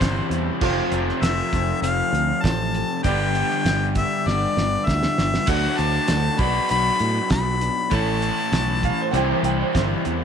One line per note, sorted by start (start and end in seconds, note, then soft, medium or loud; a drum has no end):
0.00 0.19 G1 medium
0.00 0.59 C3 loud
0.00 0.60 E3 loud
0.00 0.31 E3 medium
0.00 0.60 G3 loud
0.00 0.31 G3 medium
0.00 0.61 C4 loud
0.00 0.32 C4 medium
0.00 0.59 E4 medium
0.00 0.61 E4 loud
0.00 0.59 G4 medium
0.00 0.27 C5 medium
0.00 kick medium
0.00 snare loud
0.00 closed hi-hat loud
0.04 0.30 E4 medium
0.30 0.49 E2 medium
0.30 0.62 C4 medium
0.30 0.61 E4 medium
0.30 closed hi-hat medium
0.34 0.63 G3 medium
0.61 0.80 F1 medium
0.61 0.92 F2 medium
0.61 0.92 C3 medium
0.61 0.92 F3 medium
0.61 0.92 A3 medium
0.61 0.92 C4 loud
0.61 2.40 F4 medium
0.61 0.90 F4 loud
0.61 2.40 A4 medium
0.61 2.40 C5 loud
0.61 kick loud
0.61 crash medium
0.91 1.10 F1 medium
0.91 1.21 F3 soft
0.91 1.22 A3 soft
0.91 1.22 C4 medium
0.91 1.22 F4 medium
0.91 closed hi-hat medium
1.09 snare soft
1.22 1.40 F1 medium
1.22 1.52 F3 medium
1.22 1.53 A3 medium
1.22 1.53 C4 medium
1.22 1.52 F4 medium
1.22 1.79 E5 medium
1.22 snare loud
1.22 closed hi-hat loud
1.53 1.71 F1 medium
1.53 1.82 F3 soft
1.53 1.82 A3 medium
1.53 1.83 C4 medium
1.53 1.83 F4 medium
1.53 kick medium
1.53 closed hi-hat medium
1.82 2.01 F1 medium
1.82 2.13 F2 medium
1.82 2.13 C3 medium
1.82 2.13 F3 medium
1.82 2.13 A3 medium
1.82 2.13 C4 medium
1.82 2.12 F4 medium
1.82 2.44 F5 loud
1.82 closed hi-hat loud
2.13 2.31 D2 loud
2.13 2.41 F3 soft
2.13 2.42 A3 soft
2.13 2.43 C4 soft
2.13 2.43 F4 soft
2.13 closed hi-hat medium
2.42 2.81 A1 medium
2.42 2.73 F3 medium
2.42 2.74 A3 medium
2.42 2.74 C4 medium
2.42 2.73 F4 medium
2.42 3.05 F4 soft
2.42 3.05 A4 soft
2.42 3.05 C5 medium
2.42 3.03 A5 medium
2.42 kick medium
2.42 snare loud
2.42 closed hi-hat medium
2.74 3.05 F3 soft
2.74 3.05 A3 medium
2.74 3.05 C4 medium
2.74 3.04 F4 medium
2.74 closed hi-hat medium
3.03 3.42 G1 medium
3.03 3.35 G2 medium
3.03 3.35 D3 medium
3.03 3.35 G3 medium
3.03 3.35 B3 medium
3.03 3.35 D4 medium
3.03 5.45 G4 medium
3.03 3.34 G4 loud
3.03 5.44 B4 medium
3.03 5.44 D5 medium
3.03 3.91 G5 loud
3.03 kick loud
3.03 closed hi-hat medium
3.35 3.64 G3 soft
3.35 3.65 B3 soft
3.35 3.66 D4 soft
3.35 3.65 G4 medium
3.35 closed hi-hat medium
3.51 snare soft
3.65 4.02 G1 medium
3.65 3.96 G3 medium
3.65 3.96 B3 medium
3.65 3.95 D4 medium
3.65 3.94 G4 medium
3.65 snare loud
3.65 closed hi-hat medium
3.95 4.25 G3 soft
3.95 4.25 B3 soft
3.95 4.26 D4 soft
3.95 4.26 G4 medium
3.95 4.29 E5 medium
3.95 kick medium
3.95 closed hi-hat medium
4.25 4.45 G1 medium
4.25 4.56 G2 medium
4.25 4.56 D3 medium
4.25 4.56 G3 medium
4.25 4.57 B3 medium
4.25 4.57 D4 medium
4.25 4.56 G4 medium
4.25 4.88 D5 loud
4.25 snare medium
4.57 4.75 G1 medium
4.57 4.86 G3 soft
4.57 4.87 B3 soft
4.57 4.88 D4 soft
4.57 4.87 G4 soft
4.57 snare medium
4.86 5.05 D2 medium
4.86 5.17 G3 medium
4.86 5.17 B3 medium
4.86 5.17 D4 medium
4.86 5.16 G4 medium
4.86 5.51 E5 medium
4.86 kick medium
4.86 snare medium
5.03 snare medium
5.17 5.37 G1 medium
5.17 5.48 G3 soft
5.17 5.48 B3 soft
5.17 5.48 D4 soft
5.17 5.47 G4 medium
5.17 snare medium
5.34 snare medium
5.47 5.66 D2 medium
5.47 5.78 D3 medium
5.47 5.79 F#3 medium
5.47 5.79 A3 medium
5.47 5.78 D4 medium
5.47 6.39 F#4 medium
5.47 5.76 F#4 medium
5.47 6.40 A4 medium
5.47 6.39 D5 medium
5.47 5.79 F#5 medium
5.47 kick loud
5.47 closed hi-hat loud
5.47 crash loud
5.77 5.97 D2 medium
5.77 6.06 A3 soft
5.77 6.08 D4 soft
5.77 6.08 F#4 medium
5.77 6.41 A5 medium
5.77 closed hi-hat medium
6.07 6.28 D2 medium
6.07 6.38 F#3 medium
6.07 6.39 A3 medium
6.07 6.39 D4 medium
6.07 6.38 F#4 medium
6.07 snare loud
6.07 closed hi-hat loud
6.37 6.58 B1 medium
6.37 7.89 B2 medium
6.37 7.90 F#3 medium
6.37 6.69 D4 medium
6.37 6.70 F#4 medium
6.37 7.89 F#4 medium
6.37 7.89 B4 medium
6.37 7.89 D5 medium
6.37 6.70 B5 loud
6.37 kick loud
6.37 closed hi-hat medium
6.41 6.69 B3 soft
6.69 6.89 B1 medium
6.69 7.00 B2 medium
6.69 7.00 F#3 medium
6.69 7.00 B3 medium
6.69 7.00 D4 medium
6.69 6.99 F#4 loud
6.69 7.27 B5 loud
6.69 closed hi-hat loud
6.99 7.19 A2 medium
6.99 7.30 B3 soft
6.99 7.31 D4 soft
6.99 7.30 F#4 soft
6.99 closed hi-hat medium
7.30 7.68 B1 medium
7.30 7.61 F#3 medium
7.30 7.61 B3 medium
7.30 7.60 D4 medium
7.30 7.58 F#4 medium
7.30 7.97 B5 loud
7.30 kick medium
7.30 snare loud
7.30 closed hi-hat medium
7.59 7.91 B3 soft
7.59 7.91 D4 medium
7.59 7.91 F#4 medium
7.59 closed hi-hat medium
7.90 8.29 A1 medium
7.90 8.21 A2 medium
7.90 8.21 E3 medium
7.90 8.22 A3 medium
7.90 8.20 C#4 medium
7.90 9.11 E4 medium
7.90 8.19 E4 medium
7.90 9.11 A4 medium
7.90 9.11 C#5 medium
7.90 kick loud
7.90 closed hi-hat medium
7.95 9.15 A5 medium
8.20 8.51 C#4 soft
8.20 8.52 E4 medium
8.20 closed hi-hat medium
8.50 8.90 B1 medium
8.50 8.82 E3 medium
8.50 8.82 A3 medium
8.50 8.82 C#4 medium
8.50 8.80 E4 medium
8.50 snare loud
8.50 closed hi-hat medium
8.81 9.11 A3 soft
8.81 9.13 C#4 medium
8.81 9.12 E4 medium
8.81 kick medium
8.81 closed hi-hat medium
8.85 8.98 F5 medium
9.01 9.14 C5 medium
9.11 9.32 C2 medium
9.11 9.43 C3 medium
9.11 9.43 E3 loud
9.11 9.43 G3 medium
9.11 9.43 C4 loud
9.11 9.42 E4 loud
9.11 10.24 E4 medium
9.11 10.24 G4 medium
9.11 10.24 C5 medium
9.11 9.15 F#5 medium
9.11 closed hi-hat medium
9.16 9.29 G5 medium
9.31 9.44 C5 medium
9.43 9.62 C2 medium
9.43 9.73 G3 soft
9.43 9.73 C4 medium
9.43 9.74 E4 medium
9.43 9.58 G5 medium
9.43 closed hi-hat medium
9.61 9.73 C5 medium
9.73 9.94 G1 medium
9.73 10.04 E3 medium
9.73 10.05 G3 medium
9.73 10.04 C4 medium
9.73 10.17 E4 medium
9.73 10.03 E4 medium
9.73 10.19 C5 medium
9.73 kick medium
9.73 snare loud
9.73 closed hi-hat medium
10.04 10.24 E2 medium
10.04 10.24 G3 medium
10.04 10.24 C4 medium
10.04 10.24 E4 medium
10.04 closed hi-hat medium